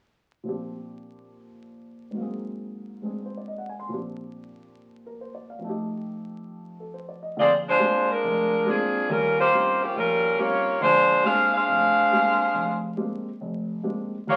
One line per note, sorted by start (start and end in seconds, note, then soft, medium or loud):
0.43 2.17 A#2 soft
0.43 2.18 F3 soft
0.43 2.18 C4 soft
0.48 2.20 D4 soft
0.48 2.20 G4 soft
2.11 3.88 G#2 soft
2.11 3.89 F#3 soft
2.17 3.91 A#3 soft
2.17 3.02 C4 soft
2.22 3.04 G#4 soft
3.02 3.90 G#3 soft
3.02 3.89 C4 soft
3.02 3.91 D4 soft
3.02 3.92 G#4 soft
3.26 3.39 C5 soft
3.37 3.52 D5 soft
3.48 3.68 D#5 soft
3.58 3.77 F#5 soft
3.69 3.83 G#5 soft
3.80 3.95 C6 soft
3.89 5.63 A#2 soft
3.89 5.60 F3 soft
3.89 5.64 C4 soft
3.89 5.65 D4 soft
3.93 5.66 G4 soft
5.06 5.29 A#4 soft
5.21 5.48 C5 soft
5.35 5.58 D5 soft
5.50 5.72 F5 soft
5.59 7.34 F2 soft
5.59 7.36 F3 soft
5.64 7.37 A3 soft
5.64 7.38 D#4 soft
5.69 7.40 G4 soft
6.80 7.02 A4 soft
6.94 7.21 C5 soft
7.09 7.31 D5 soft
7.23 7.45 D#5 soft
7.37 7.75 A#1 medium
7.37 7.75 D3 medium
7.37 7.52 C4 medium
7.37 7.52 F4 medium
7.37 7.52 G#4 medium
7.37 7.52 D5 medium
7.68 8.08 G#3 medium
7.68 8.08 D4 medium
7.68 8.08 F4 medium
7.68 8.08 C5 medium
7.79 8.10 G#3 soft
7.79 8.10 A#3 soft
7.79 8.11 C4 soft
7.79 8.10 D4 soft
7.79 8.10 G4 medium
8.11 8.67 G#3 medium
8.11 8.67 D4 medium
8.11 8.68 F4 medium
8.11 8.67 A#4 medium
8.23 8.61 F1 medium
8.65 9.07 F3 medium
8.65 8.96 G#3 soft
8.65 8.96 A#3 soft
8.65 8.97 C4 soft
8.65 9.08 C4 medium
8.65 8.96 D4 soft
8.65 9.08 D4 medium
8.65 8.97 G4 soft
8.65 9.08 G#4 medium
9.09 9.47 D#2 medium
9.09 9.39 G3 medium
9.09 9.47 G3 medium
9.09 9.39 C#4 medium
9.09 9.39 F4 medium
9.09 9.39 A#4 medium
9.39 9.79 A#3 medium
9.39 9.79 F4 medium
9.39 9.79 G4 medium
9.39 9.79 C5 medium
9.53 9.83 G3 soft
9.53 9.83 C4 soft
9.53 9.83 C#4 soft
9.53 9.83 D#4 soft
9.53 9.83 F4 medium
9.82 9.96 F3 medium
9.82 9.96 A#3 medium
9.82 9.95 C#4 medium
9.82 9.97 G4 medium
9.96 10.33 A#1 medium
9.96 10.37 G3 medium
9.96 10.36 C#4 medium
9.96 10.37 F4 medium
9.96 10.36 A#4 medium
10.38 10.69 G3 soft
10.38 10.82 A#3 medium
10.38 10.69 C4 soft
10.38 10.70 C#4 soft
10.38 10.70 D#4 soft
10.38 10.81 F4 medium
10.38 10.70 F4 medium
10.38 10.82 G4 medium
10.38 10.82 C#5 loud
10.80 11.19 A#1 medium
10.80 11.19 D3 medium
10.80 11.22 G#3 medium
10.80 11.22 D4 medium
10.80 11.22 F4 medium
10.80 11.22 C5 loud
11.24 11.55 G#3 soft
11.24 11.55 A#3 soft
11.24 11.55 C4 soft
11.24 11.55 D4 soft
11.24 11.52 D4 medium
11.24 11.55 G4 medium
11.24 11.52 G#4 medium
11.24 11.52 C5 medium
11.24 11.52 F5 loud
11.54 12.80 D4 medium
11.54 12.80 G#4 medium
11.54 12.80 C5 medium
11.54 12.80 F5 loud
11.68 12.05 F1 medium
11.68 12.06 F2 medium
12.11 12.42 G#3 soft
12.11 12.42 A#3 soft
12.11 12.42 C4 soft
12.11 12.42 D4 soft
12.11 12.42 G4 medium
12.54 12.92 F1 medium
12.97 13.28 G#3 soft
12.97 13.28 A#3 soft
12.97 13.28 C4 soft
12.97 13.28 D4 soft
12.97 13.28 G4 soft
13.41 13.78 F1 medium
13.83 14.14 G#3 soft
13.83 14.14 A#3 soft
13.83 14.14 C4 soft
13.83 14.14 D4 soft
13.83 14.14 G4 soft
14.27 14.37 D#2 medium
14.27 14.37 A#3 medium
14.27 14.37 F4 medium
14.27 14.37 G4 medium
14.27 14.37 C#5 medium